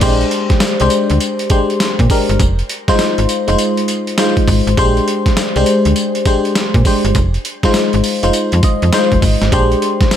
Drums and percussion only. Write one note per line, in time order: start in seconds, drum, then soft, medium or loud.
0.01 kick loud
0.01 closed hi-hat medium
0.01 crash loud
0.01 tambourine medium
0.21 closed hi-hat soft
0.31 closed hi-hat medium
0.50 kick loud
0.50 snare medium
0.50 closed hi-hat soft
0.60 snare loud
0.60 closed hi-hat medium
0.60 tambourine loud
0.80 closed hi-hat medium
0.90 closed hi-hat medium
0.90 tambourine medium
1.10 closed hi-hat medium
1.20 closed hi-hat medium
1.20 tambourine medium
1.39 closed hi-hat medium
1.50 kick loud
1.50 closed hi-hat medium
1.50 tambourine medium
1.70 closed hi-hat soft
1.80 snare loud
1.80 closed hi-hat medium
1.80 tambourine medium
1.99 kick medium
1.99 closed hi-hat soft
2.10 kick medium
2.10 open hi-hat medium
2.10 tambourine medium
2.29 closed hi-hat medium
2.40 kick loud
2.40 closed hi-hat medium
2.40 tambourine medium
2.59 closed hi-hat soft
2.69 closed hi-hat medium
2.88 kick medium
2.88 snare medium
2.88 closed hi-hat soft
2.99 snare loud
2.99 closed hi-hat medium
2.99 tambourine loud
3.18 closed hi-hat medium
3.29 closed hi-hat medium
3.29 tambourine medium
3.48 closed hi-hat medium
3.58 closed hi-hat medium
3.58 tambourine medium
3.77 closed hi-hat soft
3.88 closed hi-hat medium
3.88 tambourine medium
4.07 closed hi-hat soft
4.18 snare loud
4.18 closed hi-hat medium
4.18 tambourine medium
4.37 kick medium
4.37 closed hi-hat soft
4.48 kick medium
4.48 open hi-hat medium
4.48 tambourine medium
4.67 closed hi-hat medium
4.77 kick loud
4.77 closed hi-hat medium
4.77 tambourine medium
4.97 closed hi-hat soft
5.08 closed hi-hat medium
5.26 kick medium
5.26 snare medium
5.26 closed hi-hat medium
5.37 snare loud
5.37 closed hi-hat medium
5.37 tambourine loud
5.56 closed hi-hat medium
5.66 closed hi-hat medium
5.66 tambourine medium
5.85 closed hi-hat medium
5.96 closed hi-hat medium
5.96 tambourine medium
6.15 closed hi-hat soft
6.25 kick medium
6.25 closed hi-hat medium
6.25 tambourine medium
6.45 closed hi-hat soft
6.55 snare loud
6.55 closed hi-hat medium
6.55 tambourine medium
6.74 kick loud
6.74 closed hi-hat soft
6.85 kick medium
6.85 open hi-hat medium
6.85 tambourine medium
7.05 closed hi-hat medium
7.15 kick loud
7.15 closed hi-hat medium
7.15 tambourine medium
7.34 closed hi-hat soft
7.45 closed hi-hat medium
7.63 kick medium
7.63 snare medium
7.63 closed hi-hat medium
7.74 snare loud
7.74 closed hi-hat medium
7.74 tambourine loud
7.93 closed hi-hat medium
8.04 open hi-hat medium
8.04 tambourine medium
8.23 closed hi-hat medium
8.33 closed hi-hat medium
8.33 tambourine medium
8.52 closed hi-hat soft
8.63 kick loud
8.63 closed hi-hat medium
8.63 tambourine medium
8.82 closed hi-hat soft
8.93 snare loud
8.93 closed hi-hat medium
8.93 tambourine loud
9.12 kick medium
9.12 closed hi-hat soft
9.22 kick loud
9.22 open hi-hat medium
9.22 tambourine medium
9.42 snare medium
9.42 closed hi-hat medium
9.52 kick loud
9.52 closed hi-hat medium
9.52 tambourine medium
9.72 closed hi-hat soft
9.82 closed hi-hat medium
10.01 kick loud
10.01 snare medium
10.01 closed hi-hat soft
10.11 snare loud
10.11 closed hi-hat medium
10.11 tambourine loud